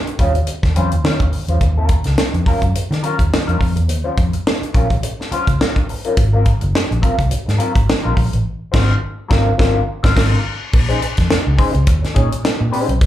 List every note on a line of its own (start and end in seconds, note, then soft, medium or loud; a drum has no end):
0.07 muted clean electric guitar stroke soft
0.07 closed hi-hat soft
0.19 0.41 D#2 medium
0.19 0.34 G3 medium
0.19 0.34 C#4 medium
0.19 0.35 F4 medium
0.19 0.35 C#5 medium
0.19 kick medium
0.19 closed hi-hat medium
0.35 muted clean electric guitar stroke soft
0.35 closed hi-hat soft
0.47 closed hi-hat loud
0.63 0.76 D#2 loud
0.63 muted clean electric guitar stroke medium
0.63 kick medium
0.63 snare soft
0.63 closed hi-hat soft
0.76 0.92 F2 medium
0.76 0.91 G3 medium
0.76 0.91 C#4 loud
0.76 0.92 F4 medium
0.76 0.91 C5 medium
0.76 closed hi-hat medium
0.92 1.02 D#2 medium
0.92 muted clean electric guitar stroke medium
0.92 closed hi-hat medium
1.04 1.16 D#3 loud
1.04 1.20 G3 medium
1.04 1.20 C#4 medium
1.04 1.20 F4 medium
1.04 1.21 C#5 medium
1.04 snare loud
1.20 1.30 D#2 medium
1.20 kick medium
1.20 closed hi-hat soft
1.33 muted clean electric guitar stroke soft
1.33 open hi-hat medium
1.48 1.58 E2 medium
1.48 1.59 G3 medium
1.48 1.59 C#4 soft
1.48 1.59 F4 medium
1.48 1.58 C5 medium
1.48 closed hi-hat medium
1.61 1.95 D#2 medium
1.61 muted clean electric guitar stroke soft
1.61 kick loud
1.61 closed hi-hat medium
1.78 1.91 F#3 medium
1.78 1.91 C#4 medium
1.78 1.91 F4 medium
1.78 1.92 A#4 medium
1.89 muted clean electric guitar stroke soft
1.89 kick medium
1.89 closed hi-hat medium
2.04 2.15 C#2 medium
2.04 muted clean electric guitar stroke soft
2.04 snare soft
2.04 closed hi-hat soft
2.18 snare loud
2.34 2.44 F2 medium
2.34 muted clean electric guitar stroke soft
2.34 closed hi-hat soft
2.46 2.62 F#3 medium
2.46 2.62 C#4 medium
2.46 2.62 F4 medium
2.46 2.61 A#4 medium
2.46 kick medium
2.46 open hi-hat soft
2.62 2.72 F#2 medium
2.62 muted clean electric guitar stroke soft
2.62 kick medium
2.62 closed hi-hat soft
2.75 muted fingered electric bass stroke soft
2.75 closed hi-hat loud
2.91 3.01 D#3 loud
2.91 muted clean electric guitar stroke soft
2.91 snare soft
2.91 closed hi-hat soft
3.03 3.18 F#3 loud
3.03 3.19 C#4 loud
3.03 3.18 F4 medium
3.03 3.17 A#4 loud
3.03 closed hi-hat medium
3.19 3.29 D#2 medium
3.19 muted clean electric guitar stroke medium
3.19 kick medium
3.19 closed hi-hat medium
3.32 muted clean electric guitar stroke soft
3.32 snare loud
3.47 3.58 F2 medium
3.47 3.58 F#3 medium
3.47 3.59 C#4 medium
3.47 3.59 F4 medium
3.47 3.60 A#4 medium
3.47 closed hi-hat soft
3.60 3.76 F2 loud
3.60 muted clean electric guitar stroke soft
3.60 kick medium
3.60 open hi-hat medium
3.76 3.89 E2 medium
3.76 muted clean electric guitar stroke medium
3.76 closed hi-hat soft
3.87 4.02 D#2 loud
3.87 muted clean electric guitar stroke soft
3.87 closed hi-hat medium
4.04 4.16 F#3 medium
4.04 4.16 C#4 medium
4.04 4.17 F4 medium
4.04 4.17 C5 medium
4.17 4.30 F2 medium
4.17 muted clean electric guitar stroke soft
4.17 kick loud
4.17 closed hi-hat medium
4.33 muted clean electric guitar stroke medium
4.33 closed hi-hat soft
4.47 snare loud
4.61 muted clean electric guitar stroke soft
4.61 muted fingered electric bass stroke soft
4.61 closed hi-hat soft
4.74 4.97 A#1 medium
4.74 4.89 F#3 medium
4.74 4.90 C#4 medium
4.74 4.89 F4 medium
4.74 4.88 A#4 loud
4.74 kick medium
4.74 closed hi-hat medium
4.89 muted clean electric guitar stroke soft
4.89 kick medium
4.89 closed hi-hat soft
5.03 muted clean electric guitar stroke soft
5.03 closed hi-hat medium
5.20 muted clean electric guitar stroke medium
5.20 snare soft
5.31 5.47 F#3 medium
5.31 5.47 C#4 medium
5.31 5.47 F4 loud
5.31 5.48 C5 loud
5.31 muted fingered electric bass stroke soft
5.31 closed hi-hat medium
5.47 5.57 C#2 medium
5.47 muted clean electric guitar stroke soft
5.47 kick medium
5.47 closed hi-hat medium
5.61 5.76 F#3 medium
5.61 5.76 C#4 medium
5.61 5.76 F4 medium
5.61 5.76 A#4 medium
5.61 snare loud
5.76 kick medium
5.76 closed hi-hat soft
5.89 muted clean electric guitar stroke soft
5.89 open hi-hat medium
6.04 6.15 F#3 medium
6.04 6.14 C#4 medium
6.04 6.14 F4 medium
6.04 6.14 A#4 medium
6.04 closed hi-hat soft
6.17 6.51 G#1 loud
6.17 kick loud
6.17 closed hi-hat medium
6.33 6.45 F#3 medium
6.33 6.45 C4 medium
6.33 6.45 F4 medium
6.33 6.45 A#4 medium
6.46 muted clean electric guitar stroke soft
6.46 kick medium
6.46 closed hi-hat medium
6.61 6.72 F#1 medium
6.61 muted clean electric guitar stroke soft
6.61 closed hi-hat soft
6.75 snare loud
6.88 7.00 A#1 medium
6.88 muted clean electric guitar stroke medium
6.88 closed hi-hat soft
7.02 7.18 F#3 medium
7.02 7.17 C4 medium
7.02 7.17 F4 medium
7.02 7.16 A#4 medium
7.02 kick medium
7.02 closed hi-hat medium
7.17 7.28 C2 medium
7.17 muted clean electric guitar stroke soft
7.17 kick medium
7.17 closed hi-hat soft
7.31 muted fingered electric bass stroke soft
7.31 closed hi-hat medium
7.46 7.58 G#2 loud
7.46 muted clean electric guitar stroke soft
7.46 snare soft
7.46 closed hi-hat soft
7.58 7.74 F#3 loud
7.58 7.74 C4 medium
7.58 7.73 F4 loud
7.58 7.73 A#4 medium
7.58 closed hi-hat medium
7.74 7.85 G#1 medium
7.74 muted clean electric guitar stroke soft
7.74 kick medium
7.74 closed hi-hat medium
7.87 muted clean electric guitar stroke soft
7.87 snare loud
8.03 8.14 A#1 medium
8.03 8.15 F#3 medium
8.03 8.15 C4 medium
8.03 8.15 F4 medium
8.03 8.16 A#4 medium
8.16 8.29 A#1 loud
8.16 muted clean electric guitar stroke soft
8.16 kick medium
8.16 open hi-hat medium
8.32 8.43 A1 medium
8.32 muted clean electric guitar stroke soft
8.32 closed hi-hat soft
8.72 8.94 G#1 loud
8.72 8.93 F#3 loud
8.72 8.93 C4 loud
8.72 8.93 F4 medium
8.72 8.93 C5 loud
8.72 kick loud
8.72 snare loud
8.72 crash medium
9.28 9.51 G#1 loud
9.28 9.49 F#3 loud
9.28 9.50 C4 loud
9.28 9.50 F4 loud
9.28 9.50 A#4 loud
9.28 kick loud
9.28 snare loud
9.58 9.79 G#1 loud
9.58 9.78 F#3 loud
9.58 9.79 C4 loud
9.58 9.79 F4 loud
9.58 9.79 A#4 loud
9.58 kick loud
9.58 snare loud
10.03 10.15 G#1 loud
10.03 10.14 F#3 medium
10.03 10.14 C4 loud
10.03 10.14 F4 loud
10.03 10.15 C5 loud
10.03 kick loud
10.03 snare loud
10.16 10.36 G#1 loud
10.16 10.37 F#3 medium
10.16 10.36 C4 loud
10.16 10.36 F4 medium
10.16 10.36 A#4 medium
10.16 kick loud
10.16 snare loud
10.16 crash medium
10.73 10.95 A#1 loud
10.73 muted clean electric guitar stroke soft
10.73 kick loud
10.73 crash loud
10.89 11.00 C#4 medium
10.89 11.01 D#4 medium
10.89 11.01 G#4 medium
10.89 11.01 C5 medium
10.89 closed hi-hat soft
11.02 muted clean electric guitar stroke soft
11.02 closed hi-hat medium
11.17 11.28 F2 medium
11.17 muted clean electric guitar stroke soft
11.17 kick medium
11.17 snare soft
11.17 closed hi-hat soft
11.30 muted clean electric guitar stroke soft
11.30 muted fingered electric bass stroke soft
11.30 snare loud
11.46 11.56 C#2 medium
11.46 muted clean electric guitar stroke medium
11.57 11.73 C#4 medium
11.57 11.73 D#4 medium
11.57 11.72 G#4 medium
11.57 11.72 C5 loud
11.57 kick loud
11.57 open hi-hat medium
11.73 11.87 C#2 loud
11.73 muted clean electric guitar stroke soft
11.73 closed hi-hat soft
11.87 11.99 D#2 medium
11.87 kick loud
11.87 closed hi-hat loud
12.03 muted clean electric guitar stroke soft
12.03 snare soft
12.03 closed hi-hat soft
12.14 12.28 A#2 loud
12.14 12.30 C#4 loud
12.14 12.30 D#4 loud
12.14 12.30 G#4 medium
12.14 12.31 C#5 loud
12.14 kick loud
12.14 closed hi-hat medium
12.31 muted clean electric guitar stroke soft
12.31 closed hi-hat medium
12.43 muted clean electric guitar stroke soft
12.43 snare loud
12.59 12.70 A#2 loud
12.59 muted clean electric guitar stroke soft
12.71 12.93 C#4 medium
12.71 12.88 D#4 medium
12.71 12.88 G#4 medium
12.71 12.87 C5 loud
12.71 open hi-hat medium
12.89 13.02 B1 medium
12.89 muted clean electric guitar stroke soft
12.89 closed hi-hat medium
13.01 13.06 A#1 loud
13.01 muted clean electric guitar stroke soft
13.01 kick loud
13.01 closed hi-hat medium